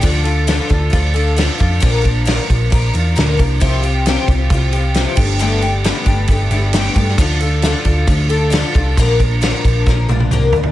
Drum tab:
CC |x-x-x-x-x-x-x-x-|x-x-x-x-x-x-x-x-|x-x-x-x-x-x-x-x-|x-x-x-x-x-x-x-x-|
SD |----o-------o---|----o-------o---|----o-------o---|----o-------o--o|
T1 |----------------|----------------|----------------|----------------|
T2 |----------------|----------------|----------------|----------------|
FT |----------------|----------------|----------------|----------------|
BD |o-----o-o-----o-|o-o---o-o-----o-|o-----o-o-----o-|------o-o-----o-|

CC |x-x-x-x-x-x-x-x-|x-x-x-x---------|
SD |----o-------o---|----o---o-------|
T1 |----------------|----------oo----|
T2 |----------------|------------o---|
FT |----------------|--------------oo|
BD |o-----o-o-----o-|o-o---o-o-------|